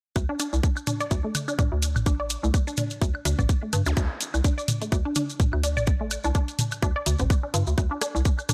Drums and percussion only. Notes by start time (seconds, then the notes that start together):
0.16 kick, high woodblock, maracas
0.39 open hi-hat, maracas
0.53 maracas
0.63 kick, maracas
0.77 high woodblock, maracas
0.87 open hi-hat, mid tom, high tom, maracas
1.00 open hi-hat, maracas
1.11 kick, maracas
1.35 open hi-hat, high tom, high woodblock, maracas
1.48 maracas
1.59 kick, mid tom, maracas
1.82 open hi-hat, maracas
1.96 mid tom, high woodblock, maracas
2.06 kick, maracas
2.30 open hi-hat, maracas
2.44 maracas
2.54 kick, high woodblock, maracas
2.67 maracas
2.77 open hi-hat, mid tom, high tom, maracas
2.90 open hi-hat, maracas
3.02 kick, maracas
3.15 high woodblock
3.25 open hi-hat, high tom, maracas
3.39 kick, mid tom, maracas
3.49 kick, maracas
3.73 open hi-hat, high tom, high woodblock, maracas
3.86 maracas
3.97 kick, maracas
4.21 open hi-hat, maracas
4.34 high woodblock, maracas
4.44 kick, maracas
4.59 maracas
4.68 open hi-hat, mid tom, high tom, maracas
4.82 open hi-hat, maracas
4.92 kick, high woodblock, maracas
5.15 open hi-hat, high tom, maracas
5.30 maracas
5.40 kick, mid tom, maracas
5.53 high woodblock
5.63 open hi-hat, maracas
5.77 mid tom, maracas
5.87 kick, maracas
6.11 open hi-hat, high woodblock, maracas
6.24 maracas
6.35 kick, maracas
6.48 open hi-hat, maracas
6.59 open hi-hat, mid tom, high tom, maracas
6.71 open hi-hat, high woodblock, maracas
6.82 kick, maracas
7.06 open hi-hat, high tom, maracas
7.19 kick, mid tom, maracas
7.30 kick, high woodblock, maracas
7.54 open hi-hat, high tom, maracas
7.67 maracas
7.78 kick, high woodblock, maracas
8.01 cross-stick, open hi-hat, maracas
8.16 maracas
8.25 kick, maracas
8.39 high woodblock, maracas
8.49 cross-stick, open hi-hat, mid tom, high tom, maracas